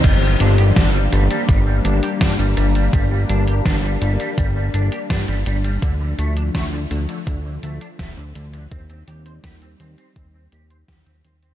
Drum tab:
CC |x---------------|----------------|----------------|----------------|
HH |x-xxx-xxx-xxxxxx|x-xxx-xxx-xxxxxx|x-xxx-xxx-xxxxxx|xxxxxxxxx-xxxxxx|
SD |----o-------o---|----o-------oo--|----o-------o---|----o-------oo--|
BD |o---o---o---o---|o---o---o---o---|o---o---o---o---|o---o---o---o---|